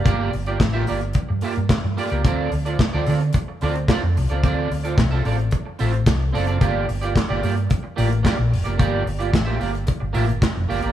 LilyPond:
<<
  \new Staff \with { instrumentName = "Clean electric guitar" } { \time 4/4 \key g \dorian \tempo 4 = 110 <bes f' g' d''>8 r16 <bes f' g' d''>16 r16 <bes f' g' e''>16 <bes f' g' d''>16 r8. <bes f' g' e''>16 r8. <bes f' g' d''>16 <bes f' g' d''>16 | <c' f' a' d''>8 r16 <c' f' a' d''>16 r16 <c' f' a' d''>16 <c' f' a' d''>16 r8. <c' f' a' d''>16 r16 <c' f' a' d''>16 r8 <c' f' a' d''>16 | <c' f' a' d''>8 r16 <c' f' a' d''>16 r16 <c' f' a' e''>16 <c' f' a' d''>16 r8. <c' f' a' e''>16 r8. <c' f' a' d''>16 <c' f' a' d''>16 | <bes f' g' d''>8 r16 <bes f' g' d''>16 r16 <bes f' g' d''>16 <bes f' g' d''>16 r8. <bes f' g' d''>16 r16 <bes f' g' d''>16 r8 <bes f' g' d''>16 |
<bes f' g' d''>8 r16 <bes f' g' d''>16 r16 <bes f' g' e''>16 <bes f' g' d''>16 r8. <bes f' g' e''>16 r8. <bes f' g' d''>16 <bes f' g' d''>16 | }
  \new Staff \with { instrumentName = "Fingered electric bass" } { \clef bass \time 4/4 \key g \dorian g,,8 g,,8 a,,8 g,,8 r16 g,16 r16 g,16 r16 g,16 r16 cis,16 | d,8 d,8 r16 d,16 d8 r8 d,8 r16 f,16 c,16 cis,16 | d,8 d,8 c,8 a,,8 r8 a,,8 c,8 fis,,8 | g,,8 g,,8 r16 g,,16 g,8 r8 a,,8 r16 bes,,16 f,,16 fis,,16 |
g,,8 g,,8 a,,8 g,,8 r16 g,,16 a,,16 g,,16 r16 f,,16 g,,16 gis,,16 | }
  \new DrumStaff \with { instrumentName = "Drums" } \drummode { \time 4/4 <hh bd>8 hho16 hh16 <hc hh bd sn>8 hho16 hh16 <hh bd>8 hho16 hh16 <hc hh bd sn>8 hho16 hh16 | <hh bd>8 hho16 hh16 <hc hh bd sn>8 hho16 hh16 <hh bd>8 hho16 hh16 <hc hh bd sn>8 hho16 hh16 | <hh bd>8 hho16 hh16 <hc hh bd sn>8 hho16 hh16 <hh bd>8 hho16 hh16 <hc hh bd sn>8 hho16 hh16 | <hh bd>8 hho16 hh16 <hc hh bd sn>8 hho16 hh16 <hh bd>8 hho16 hh16 <hc hh bd sn>8 hho16 hh16 |
<hh bd>8 hho16 hh16 <hc hh bd sn>8 hho16 hh16 <hh bd>8 hho16 hh16 <hc hh bd sn>8 hho16 hh16 | }
>>